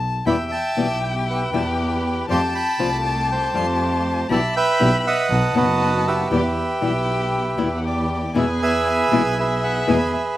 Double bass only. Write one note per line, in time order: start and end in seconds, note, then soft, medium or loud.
0.00 0.22 B1 medium
0.26 0.47 E2 medium
0.77 1.49 B1 medium
1.52 2.25 E2 medium
2.29 2.50 F2 medium
2.79 3.51 C2 medium
3.55 4.26 F2 medium
4.29 4.51 B1 medium
4.80 5.01 B1 medium
5.29 5.51 B1 medium
5.55 6.27 F#1 medium
6.31 6.52 E2 medium
6.82 7.55 B1 medium
7.59 8.32 E2 medium
8.36 9.08 E2 medium
9.12 9.84 B1 medium
9.88 10.09 E2 medium